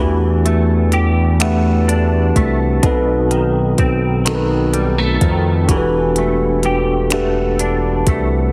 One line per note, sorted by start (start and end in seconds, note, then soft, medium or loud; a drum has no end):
0.00 2.32 E2 loud
0.00 2.83 E3 medium
0.00 0.45 A3 medium
0.00 0.93 A3 medium
0.00 0.93 D4 medium
0.00 0.94 F#4 medium
0.00 0.94 G4 medium
0.00 0.94 B4 medium
0.45 1.40 A3 soft
0.45 closed hi-hat soft
0.92 2.93 G4 medium
0.92 closed hi-hat soft
1.40 2.36 A3 medium
1.40 2.36 D4 medium
1.40 2.37 G4 medium
1.40 2.37 B4 medium
1.40 2.37 F#5 medium
1.40 finger snap medium
1.40 closed hi-hat medium
1.88 2.93 D4 medium
1.88 closed hi-hat soft
2.36 2.79 C2 medium
2.36 3.34 A3 medium
2.36 kick medium
2.36 closed hi-hat soft
2.83 3.75 B1 loud
2.83 5.68 B2 medium
2.83 3.79 C4 medium
2.83 3.79 D#4 medium
2.83 3.80 F#4 medium
2.83 3.80 A4 medium
2.83 3.81 B4 medium
2.83 kick medium
2.83 closed hi-hat medium
3.31 4.24 D#3 medium
3.31 closed hi-hat soft
3.78 5.18 B1 medium
3.78 5.79 C4 medium
3.78 kick medium
3.78 closed hi-hat soft
4.25 5.20 D#3 medium
4.25 5.22 C4 medium
4.25 5.22 D#4 medium
4.25 5.22 F#4 medium
4.25 5.23 A4 medium
4.25 4.34 A#4 medium
4.25 finger snap loud
4.25 closed hi-hat medium
4.35 5.26 B4 medium
4.73 4.98 G3 medium
4.73 closed hi-hat soft
4.98 5.79 A3 soft
5.21 5.71 F2 medium
5.21 5.69 D#3 medium
5.21 kick medium
5.21 closed hi-hat soft
5.68 8.03 E1 loud
5.68 8.52 E3 medium
5.68 6.64 D4 medium
5.68 6.65 F#4 medium
5.68 6.65 G4 medium
5.68 6.65 A4 medium
5.68 5.76 A#4 medium
5.68 kick medium
5.68 closed hi-hat medium
5.77 6.69 B4 medium
6.16 7.12 A3 medium
6.16 closed hi-hat soft
6.63 8.52 G4 medium
6.63 closed hi-hat soft
7.10 8.08 A3 medium
7.10 8.07 D4 medium
7.10 8.08 G4 medium
7.10 8.09 A4 medium
7.10 8.09 B4 medium
7.10 8.08 F#5 medium
7.10 finger snap loud
7.10 closed hi-hat medium
7.59 8.52 D4 medium
7.59 closed hi-hat soft
8.07 8.51 C2 medium
8.07 8.52 A3 medium
8.07 kick medium
8.07 closed hi-hat soft